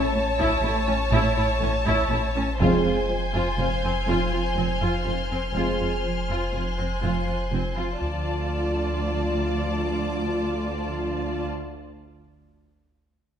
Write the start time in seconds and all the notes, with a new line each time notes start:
Already playing: A1 C#5 E5 A5
0.14 A3
0.39 A2 E4, taiko
0.63 A1 A2 A3 E4
0.88 A2 C#4
1.12 A1 A2 E4
1.37 A2 E4
1.61 A1 A2 A3 C#4
1.86 A2 E4, taiko
2.11 A1 A2 E4
2.36 A2 C#4
2.59 F1 F2 G#3 C4 F4 C5 G#5 C6 G6, taiko
2.85 F2 F4
3.09 F3
3.34 F2 F4
3.58 F1 F2 F3 F4 F6
3.83 F2 C4
4.07 F1 F2 F4
4.32 F2 F4
4.56 F1 F2 F3 C4
4.81 F2 F4
5.05 F1 F2 F4 A#4
5.30 F2 C4
5.54 F1 F2 G#3 C4 F4 C5 G#5
5.80 F2 F4
6.04 F3
6.29 F2 F4
6.53 F1 F2 F3 F4
6.78 F2 C4
6.89 F#6
7.02 F1 F2 F4
7.27 F2 F4
7.51 F1 F2 F3 C4
7.75 F2 F4
7.99 D2 F3 F4 D5 A5, taiko
9.46 D6